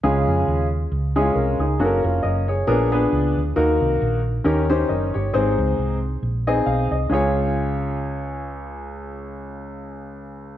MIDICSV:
0, 0, Header, 1, 3, 480
1, 0, Start_track
1, 0, Key_signature, -5, "major"
1, 0, Tempo, 440852
1, 38, Time_signature, 4, 2, 24, 8
1, 11514, End_track
2, 0, Start_track
2, 0, Title_t, "Grand piano"
2, 0, Program_c, 0, 0
2, 37, Note_on_c, 0, 49, 58
2, 37, Note_on_c, 0, 56, 68
2, 38, Note_on_c, 0, 61, 64
2, 38, Note_on_c, 0, 68, 79
2, 41, Note_on_c, 0, 65, 66
2, 715, Note_off_c, 0, 56, 0
2, 715, Note_off_c, 0, 61, 0
2, 715, Note_off_c, 0, 68, 0
2, 717, Note_off_c, 0, 65, 0
2, 740, Note_off_c, 0, 49, 0
2, 1259, Note_on_c, 0, 64, 53
2, 1260, Note_on_c, 0, 56, 72
2, 1262, Note_on_c, 0, 61, 65
2, 1264, Note_on_c, 0, 68, 77
2, 1313, Note_off_c, 0, 64, 0
2, 1318, Note_on_c, 0, 65, 64
2, 1457, Note_off_c, 0, 65, 0
2, 1466, Note_on_c, 0, 70, 51
2, 1473, Note_on_c, 0, 65, 42
2, 1478, Note_off_c, 0, 68, 0
2, 1725, Note_off_c, 0, 70, 0
2, 1729, Note_off_c, 0, 65, 0
2, 1739, Note_on_c, 0, 68, 56
2, 1745, Note_on_c, 0, 63, 50
2, 1755, Note_off_c, 0, 56, 0
2, 1756, Note_off_c, 0, 61, 0
2, 1956, Note_on_c, 0, 66, 66
2, 1957, Note_on_c, 0, 61, 64
2, 1957, Note_on_c, 0, 69, 61
2, 1959, Note_on_c, 0, 58, 67
2, 2012, Note_on_c, 0, 70, 72
2, 2022, Note_off_c, 0, 69, 0
2, 2199, Note_off_c, 0, 68, 0
2, 2202, Note_off_c, 0, 63, 0
2, 2210, Note_off_c, 0, 70, 0
2, 2225, Note_off_c, 0, 66, 0
2, 2226, Note_on_c, 0, 70, 50
2, 2231, Note_on_c, 0, 65, 46
2, 2416, Note_off_c, 0, 70, 0
2, 2425, Note_on_c, 0, 75, 59
2, 2433, Note_off_c, 0, 65, 0
2, 2433, Note_on_c, 0, 70, 50
2, 2637, Note_off_c, 0, 61, 0
2, 2638, Note_off_c, 0, 58, 0
2, 2686, Note_off_c, 0, 75, 0
2, 2690, Note_off_c, 0, 70, 0
2, 2701, Note_on_c, 0, 73, 52
2, 2708, Note_on_c, 0, 68, 43
2, 2894, Note_off_c, 0, 68, 0
2, 2910, Note_on_c, 0, 68, 71
2, 2910, Note_on_c, 0, 70, 83
2, 2912, Note_on_c, 0, 62, 68
2, 2914, Note_on_c, 0, 46, 63
2, 2916, Note_on_c, 0, 59, 75
2, 3130, Note_off_c, 0, 68, 0
2, 3130, Note_off_c, 0, 70, 0
2, 3131, Note_off_c, 0, 62, 0
2, 3133, Note_off_c, 0, 59, 0
2, 3162, Note_off_c, 0, 73, 0
2, 3176, Note_on_c, 0, 62, 70
2, 3177, Note_on_c, 0, 59, 74
2, 3177, Note_on_c, 0, 71, 80
2, 3178, Note_on_c, 0, 68, 67
2, 3623, Note_off_c, 0, 46, 0
2, 3677, Note_off_c, 0, 59, 0
2, 3677, Note_off_c, 0, 62, 0
2, 3677, Note_off_c, 0, 68, 0
2, 3677, Note_off_c, 0, 71, 0
2, 3876, Note_on_c, 0, 51, 62
2, 3876, Note_on_c, 0, 66, 69
2, 3876, Note_on_c, 0, 70, 80
2, 3877, Note_on_c, 0, 58, 73
2, 3878, Note_on_c, 0, 63, 69
2, 4560, Note_off_c, 0, 66, 0
2, 4560, Note_off_c, 0, 70, 0
2, 4561, Note_off_c, 0, 58, 0
2, 4561, Note_off_c, 0, 63, 0
2, 4586, Note_off_c, 0, 51, 0
2, 4838, Note_on_c, 0, 61, 76
2, 4841, Note_on_c, 0, 67, 72
2, 4842, Note_on_c, 0, 51, 66
2, 4845, Note_on_c, 0, 63, 71
2, 4846, Note_on_c, 0, 70, 81
2, 5057, Note_off_c, 0, 61, 0
2, 5059, Note_off_c, 0, 67, 0
2, 5061, Note_off_c, 0, 63, 0
2, 5061, Note_off_c, 0, 70, 0
2, 5113, Note_on_c, 0, 72, 82
2, 5114, Note_on_c, 0, 63, 67
2, 5116, Note_on_c, 0, 61, 69
2, 5116, Note_on_c, 0, 67, 66
2, 5324, Note_on_c, 0, 75, 51
2, 5329, Note_off_c, 0, 72, 0
2, 5331, Note_off_c, 0, 67, 0
2, 5331, Note_on_c, 0, 70, 44
2, 5550, Note_off_c, 0, 51, 0
2, 5581, Note_off_c, 0, 75, 0
2, 5584, Note_off_c, 0, 70, 0
2, 5597, Note_on_c, 0, 73, 54
2, 5601, Note_on_c, 0, 67, 48
2, 5608, Note_off_c, 0, 63, 0
2, 5609, Note_off_c, 0, 61, 0
2, 5810, Note_on_c, 0, 60, 73
2, 5810, Note_on_c, 0, 63, 60
2, 5812, Note_on_c, 0, 68, 65
2, 5813, Note_on_c, 0, 44, 64
2, 5813, Note_on_c, 0, 72, 80
2, 6054, Note_off_c, 0, 73, 0
2, 6056, Note_off_c, 0, 67, 0
2, 6489, Note_off_c, 0, 60, 0
2, 6489, Note_off_c, 0, 63, 0
2, 6490, Note_off_c, 0, 68, 0
2, 6491, Note_off_c, 0, 72, 0
2, 6516, Note_off_c, 0, 44, 0
2, 7047, Note_on_c, 0, 68, 67
2, 7047, Note_on_c, 0, 75, 75
2, 7049, Note_on_c, 0, 63, 67
2, 7052, Note_on_c, 0, 60, 66
2, 7052, Note_on_c, 0, 80, 58
2, 7246, Note_off_c, 0, 80, 0
2, 7252, Note_on_c, 0, 77, 54
2, 7500, Note_off_c, 0, 77, 0
2, 7513, Note_off_c, 0, 75, 0
2, 7529, Note_on_c, 0, 75, 56
2, 7535, Note_off_c, 0, 68, 0
2, 7536, Note_off_c, 0, 63, 0
2, 7538, Note_off_c, 0, 60, 0
2, 7724, Note_off_c, 0, 75, 0
2, 7725, Note_on_c, 0, 61, 65
2, 7743, Note_on_c, 0, 65, 63
2, 7746, Note_on_c, 0, 37, 64
2, 7752, Note_on_c, 0, 68, 64
2, 7769, Note_on_c, 0, 73, 71
2, 11514, Note_off_c, 0, 37, 0
2, 11514, Note_off_c, 0, 61, 0
2, 11514, Note_off_c, 0, 65, 0
2, 11514, Note_off_c, 0, 68, 0
2, 11514, Note_off_c, 0, 73, 0
2, 11514, End_track
3, 0, Start_track
3, 0, Title_t, "Fingered electric bass"
3, 0, Program_c, 1, 33
3, 38, Note_on_c, 1, 37, 77
3, 264, Note_off_c, 1, 37, 0
3, 303, Note_on_c, 1, 41, 78
3, 486, Note_off_c, 1, 41, 0
3, 520, Note_on_c, 1, 39, 79
3, 927, Note_off_c, 1, 39, 0
3, 997, Note_on_c, 1, 37, 79
3, 1406, Note_off_c, 1, 37, 0
3, 1474, Note_on_c, 1, 36, 73
3, 1702, Note_off_c, 1, 36, 0
3, 1733, Note_on_c, 1, 37, 79
3, 1920, Note_off_c, 1, 37, 0
3, 1951, Note_on_c, 1, 30, 88
3, 2181, Note_off_c, 1, 30, 0
3, 2223, Note_on_c, 1, 29, 88
3, 2407, Note_off_c, 1, 29, 0
3, 2440, Note_on_c, 1, 30, 75
3, 2850, Note_off_c, 1, 30, 0
3, 2914, Note_on_c, 1, 34, 85
3, 3327, Note_off_c, 1, 34, 0
3, 3404, Note_on_c, 1, 37, 79
3, 3631, Note_off_c, 1, 37, 0
3, 3672, Note_on_c, 1, 38, 68
3, 3854, Note_off_c, 1, 38, 0
3, 3886, Note_on_c, 1, 39, 83
3, 4113, Note_off_c, 1, 39, 0
3, 4147, Note_on_c, 1, 36, 85
3, 4332, Note_off_c, 1, 36, 0
3, 4373, Note_on_c, 1, 34, 80
3, 4780, Note_off_c, 1, 34, 0
3, 4848, Note_on_c, 1, 39, 99
3, 5258, Note_off_c, 1, 39, 0
3, 5333, Note_on_c, 1, 30, 76
3, 5558, Note_off_c, 1, 30, 0
3, 5613, Note_on_c, 1, 31, 74
3, 5789, Note_off_c, 1, 31, 0
3, 5825, Note_on_c, 1, 32, 84
3, 6046, Note_off_c, 1, 32, 0
3, 6080, Note_on_c, 1, 37, 83
3, 6262, Note_off_c, 1, 37, 0
3, 6294, Note_on_c, 1, 36, 71
3, 6702, Note_off_c, 1, 36, 0
3, 6779, Note_on_c, 1, 34, 77
3, 7185, Note_off_c, 1, 34, 0
3, 7257, Note_on_c, 1, 35, 70
3, 7481, Note_off_c, 1, 35, 0
3, 7526, Note_on_c, 1, 36, 73
3, 7705, Note_off_c, 1, 36, 0
3, 7737, Note_on_c, 1, 37, 80
3, 11514, Note_off_c, 1, 37, 0
3, 11514, End_track
0, 0, End_of_file